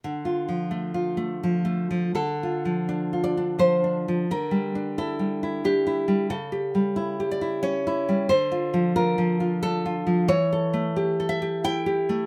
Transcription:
\new Staff \with { instrumentName = "Nylon-string guitar" } { \time 3/4 \key d \minor \tempo 4 = 89 << { r2. | a'4. d''8 c''4 | bes'4 a'4 g'4 | a'4. d''8 cis''4 |
c''4 bes'4 a'4 | cis''4. e''8 g''4 | } \\ { \tuplet 3/2 { d8 f'8 f8 a8 f'8 a8 f8 a8 f8 } | \tuplet 3/2 { d8 f'8 f8 d'8 f'8 d'8 f8 d'8 f8 } | \tuplet 3/2 { d8 g8 d'8 e'8 g8 e'8 d'8 e'8 g8 } | \tuplet 3/2 { cis8 g'8 g8 e'8 g'8 e'8 cis'8 e'8 g8 } |
\tuplet 3/2 { d8 f'8 f8 f'8 f8 f'8 d'8 f'8 f8 } | \tuplet 3/2 { e8 a'8 a8 g'8 a'8 g'8 e'8 g'8 a8 } | } >> }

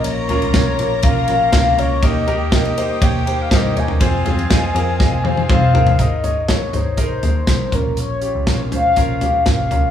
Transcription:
<<
  \new Staff \with { instrumentName = "Soft synth lead" } { \time 4/4 \key bes \dorian \tempo 4 = 121 des''4 des''4 f''8 f''4 des''8 | ees''4 ees''4 g''8. f''16 ees''8 aes''8~ | aes''2. f''4 | ees''4 des''4 c''4. bes'8 |
des''4 des''8 f''4. f''4 | }
  \new Staff \with { instrumentName = "Violin section" } { \time 4/4 \key bes \dorian <bes' bes''>1 | <g' g''>1 | <f' f''>2 <f' f''>2 | r1 |
r1 | }
  \new Staff \with { instrumentName = "Grand piano" } { \time 4/4 \key bes \dorian <bes des' f' bes'>8 <bes des' f' bes'>8 <bes des' f' des''>8 <bes des' f' bes'>8 <bes des' f' bes'>8 <bes des' f' bes'>8 <bes des' f' bes'>8 <bes des' f' bes'>8 | <bes ees' g' bes'>8 <bes ees' g' bes'>8 <bes ees' g' bes'>8 <bes ees' g' c''>8 <bes ees' g' des''>8 <bes ees' g' c''>8 <bes ees' g' c''>8 <bes ees' g' des''>8 | <c' f' aes' c''>8 <c' f' aes' c''>8 <c' f' aes' ees''>8 <c' f' aes' bes'>8 <c' f' aes' ees''>8 <c' f' aes' c''>8 <c' f' aes' c''>8 <c' f' aes' bes'>8 | <ees' aes' bes'>8 <ees' aes' des''>8 <ees' aes' bes'>8 <ees' aes' c''>8 <ees' aes' bes'>8 <ees' aes' c''>8 <ees' aes' bes'>8 <des' f' bes'>8~ |
<des' f' bes'>8 <des' f' g'>8 <des' f' bes'>8 <des' f' c''>8 <des' f' bes'>8 <des' f' g'>8 <des' f' bes'>8 <des' f' bes'>8 | }
  \new Staff \with { instrumentName = "Grand piano" } { \clef bass \time 4/4 \key bes \dorian bes,4 r2. | ees4. r2 r8 | r1 | aes,4. r2 bes,8~ |
bes,4 r2. | }
  \new Staff \with { instrumentName = "Picked electric bass" } { \clef bass \time 4/4 \key bes \dorian bes,,8. c,8. bes,,4 bes,,8 des,8 des,8 | ees,2 ees,4 g,8 ees,8 | f,8. f,8. f,4 f,8 f,8 g,,8 | aes,,4. aes,,4 ees,8 c,8 bes,,8 |
bes,,8. des,16 bes,,4 bes,,4 aes,,8 des,8 | }
  \new DrumStaff \with { instrumentName = "Drums" } \drummode { \time 4/4 cymr8 <cymr tomfh>16 cymr16 <bd cymr sn>8 cymr8 <bd cymr>8 cymr8 <bd cymr sn>8 cymr8 | <bd cymr>8 <cymr tomfh>8 <bd cymr sn>16 cymr16 cymr8 <bd cymr>8 cymr8 <bd cymr sn>8 cymr16 tomfh16 | <bd cymr>8 <cymr tomfh>16 cymr16 <bd cymr sn>8 cymr8 <bd sn>8 tommh16 tommh16 <bd toml>8 tomfh16 tomfh16 | <hh bd>8 <hh tomfh>8 <hh bd sn>8 <hh tomfh>8 <hh bd>8 <hh tomfh>8 <hh bd sn>8 <hh bd tomfh>8 |
hh8 hh8 <hh bd sn>8 <hh tomfh>8 <hh bd>8 <hh tomfh>8 <hh bd sn>8 <hh tomfh>8 | }
>>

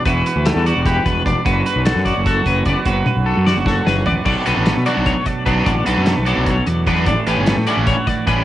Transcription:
<<
  \new Staff \with { instrumentName = "Clean electric guitar" } { \time 7/8 \key b \minor \tempo 4 = 150 b'4 a'8 d''8 g'8 b'8 d''8 | b'4 a'8 d''8 a'8 b'8 d''8 | b'4 a'8 d''8 a'8 b'8 d''8 | d''8 b'4 d''8 cis''8 d''8 b'8 |
d''8 b'4 d''8 cis''8 d''8 b'8 | d''8 b'4 d''8 cis''8 d''8 b'8 | }
  \new Staff \with { instrumentName = "Clean electric guitar" } { \time 7/8 \key b \minor << { fis'8 b'4 fis'8 b'4 d'8 | fis'8 b'4 fis'8 fis'4 b8 | fis'8 b'4 fis'8 fis'4 b8 | <fis a d' a'>8 a'8 a8 fis'16 a'4~ a'16 d'8 |
d'8 a'8 a8 a'4. d'8 | d'8 g'8 a8 fis'4. d'8 | } \\ { e4 g4. b,4 | fis,4 fis4. fis,4 | fis,4 fis4. fis,4 | b,4. fis4. fis,8 |
b,4. fis4. fis,8 | a,4. e4. a,8 | } >> }
  \new Staff \with { instrumentName = "Overdriven electric guitar" } { \time 7/8 \key b \minor r2. r8 | r2. r8 | r2. r8 | r8 <fis b d' fis'>8 r8 <fis b d' fis'>8 r4 <fis b d' fis'>8 |
r8 <fis b d' fis'>8 r8 <fis b d' fis'>8 r4 <fis b d' fis'>8 | r8 <e g cis' g'>8 r8 <e g cis' g'>8 r4 <e g cis' g'>8 | }
  \new Staff \with { instrumentName = "Fingered electric bass" } { \clef bass \time 7/8 \key b \minor e,,8 r16 d,8 e,8 e,,8. e,,8 e,,16 r16 | fis,,8 r16 b,,8 fis,8 fis,,8. fis,,8 fis,,16 r16 | fis,,8 r16 b,,8 fis,8 fis,,8. fis,,8 a,,16 r16 | b,,16 r16 b,,16 a,,8 b,16 r16 b,,8 r8. b,,8 |
a,,8 b,,16 fis,8 b,,8 b,,8. e,4 | a,,16 r16 a,,16 g,,8 a,16 r16 a,,8 r8. a,,8 | }
  \new DrumStaff \with { instrumentName = "Drums" } \drummode { \time 7/8 <hh bd>8 hh8 <hh sn>8 hh8 <hh bd>8 <hh bd>8 <hh bd>8 | <hh bd>8 hh8 <hh sn>8 <hh bd sn>8 <hh bd>8 <hh bd>8 <hh bd>8 | <hh bd>8 tommh8 r8 sn8 <bd sn>8 sn8 tomfh8 | <cymc bd>8 hh8 <hh sn>8 hh8 <hh bd>8 <hh bd>8 <hh bd>8 |
<hh bd>8 hh8 <hh sn>8 hh8 <hh bd>8 hh8 <hh bd>8 | <hh bd>8 hh8 <hh sn>8 hh8 <hh bd>8 <hh bd sn>8 <hh bd>8 | }
>>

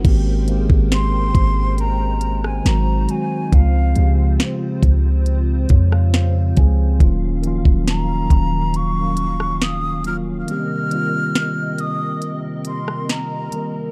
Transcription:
<<
  \new Staff \with { instrumentName = "Flute" } { \time 4/4 \key aes \major \tempo 4 = 69 r4 c'''4 bes''8. aes''16 bes''8 aes''8 | f''4 r2. | r4 bes''4 des'''4 ees'''8 f'''8 | f'''4. ees'''8. r16 c'''8 bes''8. r16 | }
  \new Staff \with { instrumentName = "Analog synth pad" } { \time 4/4 \key aes \major << { <bes' c'' g''>2. <ees' ges' c''>4 | <c' f' c''>1 | <ges des' f''>1 | <c' bes' ees''>1 | } \\ { aes1 | des1 | ees1 | c1 | } >> }
  \new Staff \with { instrumentName = "Tine electric piano" } { \time 4/4 \key aes \major <des' ges'>16 r2. r8. | r2 r8 des''16 f''16 f''8 aes''8 | r1 | r1 | }
  \new Staff \with { instrumentName = "Tine electric piano" } { \time 4/4 \key aes \major <ees aes bes c' g'>8 <ees aes bes c' g' aes'>4. r4 <ees ges aes c' ges'>8 <ees ges aes c' ges'>8 | <des f aes c' f'>8 <des f aes c' g'>4. r4. <des f aes c' aes'>8 | <ees ges bes des' f'>8 <ees f ges bes des' f'>4. r4. <ees ges bes des' f'>8 | <ees g bes c' g'>8 <ees g bes c' f'>4. r4. <ees g bes c' bes'>8 | }
  \new Staff \with { instrumentName = "808-style bass" } { \clef bass \time 4/4 \key aes \major aes,,8. aes,,8. aes,,4. aes,,8 r8 | des,8 des,8 r8 des,4 f,4 des,8 | ees,,8. ees,,8. ees,,2~ ees,,8 | r1 | }
  \new DrumStaff \with { instrumentName = "Drums" } \drummode { \time 4/4 <cymc hh bd>8 hh16 bd16 <hh sn>8 <hh bd>8 hh8 hh16 ss16 <hh sn>8 hh8 | <hh bd>8 hh8 <hh sn>8 <hh bd>8 hh8 <hh bd>16 ss16 <hh sn>8 <hh bd>8 | <hh bd>8 hh16 bd16 <hh sn>8 <hh bd>8 hh8 hh16 ss16 <hh sn>8 hh8 | hh8 hh8 <hh sn>8 hh8 hh8 hh16 ss16 <hh sn>8 hh8 | }
>>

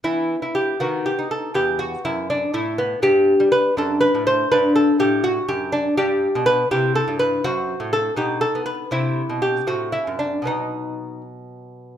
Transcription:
<<
  \new Staff \with { instrumentName = "Lute" } { \time 6/8 \key e \minor \tempo 4. = 81 << { e'4 g'8 fis'8 g'8 a'8 | g'8 fis'8 e'8 d'8 e'8 b8 | g'4 b'8 a'8 b'8 c''8 | b'8 a'8 g'8 fis'8 g'8 d'8 |
g'4 b'8 g'8 a'8 b'8 | fis'4 a'8 g'8 a'8 b'8 | e'4 g'8 fis'8 e'8 d'8 | dis'4. r4. | } \\ { b4. b4. | b2. | b4. d'4. | d'2. |
d'4. e'4. | c'4. dis'4. | c'4. c'4. | r2. | } >> }
  \new Staff \with { instrumentName = "Lute" } { \clef bass \time 6/8 \key e \minor e8. e'8. dis8. dis'8. | e,4 fis,4 a,4 | g,8. g8. fis,8. a,8. | g,4 a,4 fis,4 |
g,8. b,8. c8. g,8. | fis,8. a,8. b,8. b8. | c8. b,8. a,8. fis,8. | <b, fis b>2. | }
>>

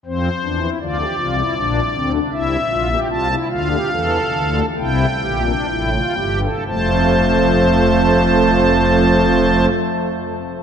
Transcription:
<<
  \new Staff \with { instrumentName = "Pipe organ" } { \time 4/4 \key f \major \tempo 4 = 68 << { c''4 d''2 e''4 | a''8 f''4. g''2 | <f a a''>1 | } \\ { c'8 d'16 e'16 f'16 g'16 f'16 e'16 d'8 c'16 d'16 e'8 f'16 g'16 | f'16 e'16 f'16 g'16 a'4 e'8 g'16 d'16 e'16 f'16 g'16 a'16 | c''1 | } >> }
  \new Staff \with { instrumentName = "Pipe organ" } { \clef bass \time 4/4 \key f \major <f, f>8 <e, e>8 <d, d>8 <c, c>8 <bes,, bes,>8 <d, d>8 <c, c>8 <bes,, bes,>8 | <c, c>8 <d, d>8 <e, e>8 <d, d>8 <c, c>8 <bes,, bes,>8 <a,, a,>8 <g,, g,>8 | <f,, f,>1 | }
>>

